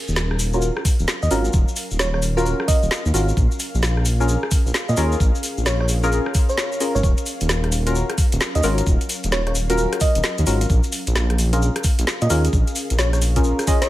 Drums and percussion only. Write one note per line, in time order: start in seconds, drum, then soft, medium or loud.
0.08 shaker soft
0.16 snare loud
0.16 shaker soft
0.31 cross-stick medium
0.39 open hi-hat loud
0.39 shaker medium
0.53 shaker soft
0.62 shaker medium
0.77 cross-stick medium
0.85 kick loud
0.85 open hi-hat loud
0.85 shaker medium
0.99 shaker soft
1.08 snare loud
1.08 shaker medium
1.22 shaker soft
1.31 open hi-hat medium
1.31 shaker medium
1.45 shaker soft
1.53 kick loud
1.53 shaker medium
1.68 shaker soft
1.76 open hi-hat loud
1.76 shaker medium
1.91 shaker soft
1.99 snare loud
1.99 shaker medium
2.14 cross-stick medium
2.22 open hi-hat medium
2.22 shaker medium
2.38 shaker soft
2.46 shaker medium
2.60 cross-stick medium
2.68 kick loud
2.68 open hi-hat loud
2.68 shaker medium
2.83 shaker soft
2.91 snare loud
2.91 shaker medium
3.06 shaker soft
3.14 open hi-hat medium
3.14 shaker medium
3.28 shaker soft
3.37 kick loud
3.37 shaker medium
3.51 shaker soft
3.60 open hi-hat loud
3.60 shaker loud
3.75 shaker soft
3.82 snare loud
3.82 shaker medium
3.97 cross-stick medium
4.05 open hi-hat medium
4.05 shaker loud
4.21 shaker soft
4.28 shaker medium
4.43 cross-stick medium
4.51 kick loud
4.51 open hi-hat loud
4.51 shaker loud
4.67 shaker soft
4.74 snare loud
4.74 shaker medium
4.89 shaker soft
4.97 open hi-hat medium
4.97 shaker loud
5.12 shaker soft
5.20 kick loud
5.20 shaker medium
5.35 shaker soft
5.43 open hi-hat loud
5.43 shaker medium
5.58 shaker soft
5.66 snare loud
5.66 shaker medium
5.80 cross-stick medium
5.88 open hi-hat medium
5.88 shaker medium
6.03 shaker soft
6.12 shaker medium
6.26 cross-stick medium
6.34 kick loud
6.34 open hi-hat loud
6.34 shaker loud
6.49 shaker soft
6.58 snare loud
6.58 shaker medium
6.72 shaker soft
6.80 open hi-hat medium
6.80 shaker loud
6.96 shaker soft
7.03 kick loud
7.03 shaker medium
7.17 closed hi-hat soft
7.17 shaker soft
7.26 open hi-hat loud
7.26 shaker medium
7.41 closed hi-hat medium
7.41 shaker soft
7.49 snare loud
7.49 shaker soft
7.64 cross-stick soft
7.64 closed hi-hat soft
7.72 open hi-hat medium
7.72 shaker loud
7.86 closed hi-hat medium
7.86 shaker soft
7.95 shaker soft
8.10 cross-stick medium
8.10 closed hi-hat medium
8.18 kick loud
8.18 open hi-hat loud
8.18 shaker medium
8.32 closed hi-hat medium
8.32 shaker soft
8.41 snare loud
8.41 shaker soft
8.55 closed hi-hat medium
8.55 shaker soft
8.63 open hi-hat medium
8.63 shaker medium
8.78 closed hi-hat medium
8.78 shaker soft
8.87 kick loud
8.87 shaker medium
9.01 closed hi-hat soft
9.01 shaker soft
9.09 open hi-hat loud
9.09 shaker medium
9.23 closed hi-hat medium
9.23 shaker soft
9.32 snare loud
9.32 shaker soft
9.47 cross-stick soft
9.47 closed hi-hat soft
9.55 open hi-hat medium
9.55 shaker medium
9.70 closed hi-hat medium
9.70 shaker soft
9.78 shaker soft
9.93 cross-stick medium
9.93 closed hi-hat medium
10.00 kick medium
10.00 open hi-hat loud
10.00 shaker medium
10.15 closed hi-hat medium
10.15 shaker soft
10.23 snare loud
10.23 shaker soft
10.38 closed hi-hat medium
10.38 shaker soft
10.47 open hi-hat medium
10.47 shaker medium
10.61 closed hi-hat medium
10.61 shaker soft
10.70 kick loud
10.70 shaker medium
10.83 closed hi-hat soft
10.83 shaker soft
10.92 open hi-hat loud
10.92 shaker medium
11.07 closed hi-hat medium
11.07 shaker soft
11.15 snare loud
11.15 shaker soft
11.30 cross-stick medium
11.30 closed hi-hat soft
11.38 open hi-hat medium
11.38 shaker medium
11.53 closed hi-hat medium
11.53 shaker soft
11.62 shaker soft
11.76 cross-stick medium
11.76 closed hi-hat medium
11.84 kick loud
11.84 open hi-hat loud
11.84 shaker medium
11.99 closed hi-hat medium
11.99 shaker soft
12.07 snare loud
12.07 shaker medium
12.21 closed hi-hat medium
12.21 shaker soft
12.30 open hi-hat loud
12.30 shaker medium
12.45 closed hi-hat medium
12.45 shaker soft
12.53 kick loud
12.53 shaker soft
12.67 closed hi-hat soft
12.67 shaker soft
12.75 open hi-hat loud
12.75 shaker loud
12.90 closed hi-hat medium
12.90 shaker soft
12.98 snare loud
12.98 shaker soft
13.13 cross-stick medium
13.13 closed hi-hat soft
13.13 shaker soft
13.22 open hi-hat loud
13.22 shaker medium
13.36 kick medium
13.36 closed hi-hat medium
13.36 shaker soft
13.44 shaker soft
13.59 cross-stick medium
13.59 closed hi-hat medium
13.59 shaker soft
13.67 kick loud
13.67 open hi-hat loud
13.67 shaker medium
13.82 snare medium
13.82 closed hi-hat medium
13.82 shaker soft